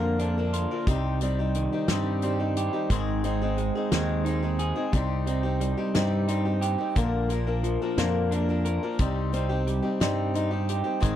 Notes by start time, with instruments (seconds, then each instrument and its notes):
Already playing: fingered electric bass F2, steel-string acoustic guitar A#2 D3 F3 A#3 D4 A#4, clean electric guitar A#2 D3
0.19 steel-string acoustic guitar F3 A#3 D4 A#4, closed hi-hat
0.38 steel-string acoustic guitar F3 A#3 D4 A#4
0.53 clean electric guitar F4, closed hi-hat
0.71 steel-string acoustic guitar F3 A#3 D4 A#4
0.87 fingered electric bass C2, steel-string acoustic guitar C3 G3 C4 D#4 G4, kick, closed hi-hat
1.21 steel-string acoustic guitar G3 C4 D#4 G4, closed hi-hat
1.39 steel-string acoustic guitar C4 D#4 G4
1.54 clean electric guitar D#3, closed hi-hat
1.72 steel-string acoustic guitar C4 D#4 G4
1.88 fingered electric bass G2, steel-string acoustic guitar C3 G3 C4 D#4 G4, snare, closed hi-hat
2.22 steel-string acoustic guitar G3 C4 D#4 G4, closed hi-hat
2.39 steel-string acoustic guitar C4 D#4 G4
2.56 clean electric guitar G4, closed hi-hat
2.73 steel-string acoustic guitar C4 D#4 G4
2.90 fingered electric bass G#1, steel-string acoustic guitar G#2 D#3 G#3 C4 D#4 G#4, kick, closed hi-hat
3.24 steel-string acoustic guitar G#3 C4 D#4 G#4, closed hi-hat
3.42 steel-string acoustic guitar G#3 C4 D#4 G#4
3.57 clean electric guitar G#3, closed hi-hat
3.75 steel-string acoustic guitar G#3 C4 D#4 G#4
3.92 fingered electric bass D#2, steel-string acoustic guitar G#2 D#3 G#3 C4 D#4 G#4, snare, closed hi-hat
4.26 steel-string acoustic guitar G#3 C4 D#4 G#4, closed hi-hat
4.42 steel-string acoustic guitar G#3 C4 D#4 G#4
4.59 clean electric guitar G#4, closed hi-hat
4.76 steel-string acoustic guitar G#3 C4 D#4 G#4
4.93 fingered electric bass C2, steel-string acoustic guitar C3 G3 C4 D#4 G4, kick, closed hi-hat
5.26 steel-string acoustic guitar G3 C4 D#4 G4, closed hi-hat
5.43 steel-string acoustic guitar C4 D#4 G4
5.60 clean electric guitar G3, closed hi-hat
5.77 steel-string acoustic guitar C4 D#4 G4
5.95 fingered electric bass G2, steel-string acoustic guitar C3 G3 C4 D#4 G4, snare, closed hi-hat
6.28 steel-string acoustic guitar G3 C4 D#4 G4, closed hi-hat
6.45 steel-string acoustic guitar C4 D#4 G4
6.61 clean electric guitar G4, closed hi-hat
6.78 steel-string acoustic guitar C4 D#4 G4
6.95 fingered electric bass A#1, steel-string acoustic guitar A#2 D3 F3 A#3 D4 A#4, kick, closed hi-hat
7.29 steel-string acoustic guitar F3 A#3 D4 A#4, closed hi-hat
7.47 steel-string acoustic guitar F3 A#3 D4 A#4
7.63 clean electric guitar F3, closed hi-hat
7.82 steel-string acoustic guitar F3 A#3 D4 A#4
7.98 fingered electric bass F2, steel-string acoustic guitar A#2 D3 F3 A#3 D4 A#4, snare, closed hi-hat
8.32 steel-string acoustic guitar F3 A#3 D4 A#4, closed hi-hat
8.49 steel-string acoustic guitar F3 A#3 D4 A#4
8.65 clean electric guitar A#4, closed hi-hat
8.83 steel-string acoustic guitar F3 A#3 D4 A#4
8.99 fingered electric bass C2, steel-string acoustic guitar C3 G3 C4 D#4 G4, kick, closed hi-hat
9.33 steel-string acoustic guitar G3 C4 D#4 G4, closed hi-hat
9.49 steel-string acoustic guitar C4 D#4 G4
9.67 clean electric guitar G3, closed hi-hat
9.82 steel-string acoustic guitar C4 D#4 G4
10.00 fingered electric bass G2, steel-string acoustic guitar C3 G3 C4 D#4 G4, snare, closed hi-hat
10.34 steel-string acoustic guitar G3 C4 D#4 G4, closed hi-hat
10.51 steel-string acoustic guitar C4 D#4 G4
10.69 clean electric guitar G4, closed hi-hat
10.84 steel-string acoustic guitar C4 D#4 G4
11.00 fingered electric bass G#1, steel-string acoustic guitar G#2 D#3 G#3 C4 D#4 G#4, kick, closed hi-hat